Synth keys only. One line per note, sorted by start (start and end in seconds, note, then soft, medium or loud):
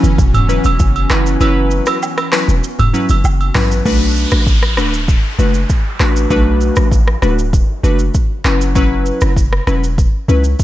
0.49 0.64 F#3 medium
0.49 0.64 C#4 medium
0.49 0.64 E4 medium
0.49 0.64 B4 medium
1.10 1.38 F#3 medium
1.10 1.38 C#4 medium
1.10 1.38 E4 medium
1.10 1.39 B4 medium
1.40 1.97 F#3 loud
1.40 1.97 C#4 medium
1.40 1.97 E4 medium
1.40 1.97 B4 loud
2.32 2.48 F#3 medium
2.32 2.48 C#4 medium
2.32 2.48 E4 medium
2.32 2.48 B4 medium
2.94 3.09 F#3 medium
2.94 3.09 C#4 medium
2.94 3.09 E4 medium
2.94 3.09 B4 medium
3.55 3.83 F#3 medium
3.55 3.83 C#4 medium
3.55 3.83 E4 medium
3.55 3.83 B4 medium
3.85 4.42 A3 medium
3.85 4.42 D4 medium
3.85 4.42 F#4 medium
3.85 4.42 B4 loud
4.77 4.93 A3 medium
4.77 4.93 D4 medium
4.77 4.93 F#4 medium
4.77 4.93 B4 medium
5.38 5.54 A3 medium
5.38 5.54 D4 medium
5.38 5.54 F#4 medium
5.38 5.54 B4 medium
6.00 6.28 A3 medium
6.00 6.28 D4 medium
6.00 6.28 F#4 medium
6.00 6.28 B4 medium
6.30 6.87 A3 loud
6.30 6.87 D4 medium
6.30 6.87 F#4 medium
6.30 6.87 B4 loud
7.22 7.37 A3 medium
7.22 7.38 D4 medium
7.22 7.38 F#4 medium
7.22 7.38 B4 medium
7.83 7.99 A3 medium
7.83 7.99 D4 medium
7.83 7.99 F#4 medium
7.83 7.99 B4 medium
8.45 8.73 F#3 medium
8.45 8.73 C#4 medium
8.45 8.73 E4 medium
8.45 8.73 B4 medium
8.75 9.32 F#3 medium
8.75 9.32 C#4 medium
8.75 9.32 E4 medium
8.75 9.32 B4 loud
9.67 9.82 F#3 medium
9.67 9.82 C#4 medium
9.67 9.83 E4 medium
9.67 9.83 B4 medium
10.28 10.44 F#3 medium
10.28 10.44 C#4 medium
10.28 10.44 E4 medium
10.28 10.44 B4 medium